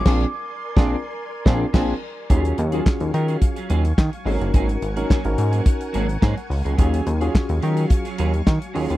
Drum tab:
CC |x-----------x---|----------------|----------------|----------------|
HH |----------------|xxxx-xxxxxxx-xox|xxxx-xxxxxxx-xox|xxxx-xxxxxxx-xox|
CP |----------------|----x-------x---|----x-------x---|----x-------x---|
SD |o----o----o-o---|----o-------o---|----o-------o---|----o-------o---|
BD |o----o----o-o---|o---o---o---o---|o---o---o---o---|o---o---o---o---|